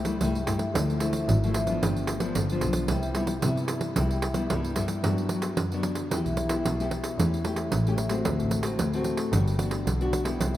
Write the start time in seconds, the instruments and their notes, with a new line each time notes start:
Already playing: double bass C2, nylon-string guitar C3
0.05 nylon-string guitar G3 A3 E4, pandeiro
0.21 double bass C2, nylon-string guitar G2 G3 A3 E4, pandeiro
0.35 pandeiro
0.46 double bass G2, nylon-string guitar G3 A3 E4, pandeiro
0.59 pandeiro
0.75 double bass D2, nylon-string guitar D3 F3 A3 E4, pandeiro
0.90 pandeiro
1.00 nylon-string guitar F3 A3 E4, pandeiro
1.13 pandeiro
1.28 double bass G#1, pandeiro
1.44 nylon-string guitar F3 A3 E4, pandeiro
1.54 pandeiro
1.67 nylon-string guitar F3 B3 D4, pandeiro
1.82 double bass G1, nylon-string guitar G2, pandeiro
1.96 pandeiro
2.07 pandeiro
2.20 nylon-string guitar F3 B3 D4, pandeiro
2.35 double bass G1, nylon-string guitar D3, pandeiro
2.50 nylon-string guitar F3 B3 D4, pandeiro
2.61 double bass B1, pandeiro
2.73 pandeiro
2.88 double bass C2, nylon-string guitar C3 G3 B3 E4, pandeiro
3.03 pandeiro
3.15 nylon-string guitar G3 B3 E4, pandeiro
3.27 pandeiro
3.42 nylon-string guitar G2 G3 B3 E4, double bass C3, pandeiro
3.57 pandeiro
3.68 pandeiro
3.81 pandeiro
3.96 double bass C2, nylon-string guitar C3 G3 B3 E4, pandeiro
4.11 pandeiro
4.22 pandeiro
4.34 nylon-string guitar G3 B3 E4, pandeiro
4.50 double bass C2, nylon-string guitar G2 G3 B3 E4, pandeiro
4.64 pandeiro
4.76 double bass G2, nylon-string guitar G3 B3 E4, pandeiro
4.88 pandeiro
5.04 double bass G2, nylon-string guitar G2 F#3 B3 D4, pandeiro
5.18 pandeiro
5.29 nylon-string guitar F#3 B3 D4, pandeiro
5.42 pandeiro
5.57 double bass F#2, nylon-string guitar D3, pandeiro
5.72 nylon-string guitar F#3 B3 D4, pandeiro
5.83 pandeiro
5.95 pandeiro
6.11 double bass E2, nylon-string guitar E3 B3 E4 G4, pandeiro
6.25 double bass B1, pandeiro
6.37 pandeiro
6.49 nylon-string guitar B3 E4 G4, pandeiro
6.65 double bass B1, nylon-string guitar B2, pandeiro
6.80 nylon-string guitar B3 E4 G4, pandeiro
6.91 pandeiro
7.04 pandeiro
7.18 double bass E2, nylon-string guitar E3 A3 C#4 G4, pandeiro
7.34 pandeiro
7.45 nylon-string guitar A3 C#4 G4, pandeiro
7.56 pandeiro
7.72 double bass A1, nylon-string guitar E3, pandeiro
7.87 nylon-string guitar A3 C#4 G4, pandeiro
7.98 pandeiro
8.09 nylon-string guitar A3 C4 F#4, pandeiro
8.25 double bass D2, nylon-string guitar D3, pandeiro
8.40 double bass A1, pandeiro
8.51 pandeiro
8.63 nylon-string guitar A3 C4 F#4, pandeiro
8.79 double bass D2, nylon-string guitar A2, pandeiro
8.93 nylon-string guitar A3 C4 F#4, pandeiro
9.04 pandeiro
9.17 pandeiro
9.32 double bass G1, nylon-string guitar G3 B3 D4 F#4, pandeiro
9.47 pandeiro
9.58 nylon-string guitar B3 D4 F#4, pandeiro
9.71 pandeiro
9.86 double bass B1, nylon-string guitar D3, pandeiro
10.01 nylon-string guitar B3 D4 F#4, pandeiro
10.13 pandeiro
10.24 nylon-string guitar G3 B3 E4, pandeiro
10.39 double bass C2, nylon-string guitar C3, pandeiro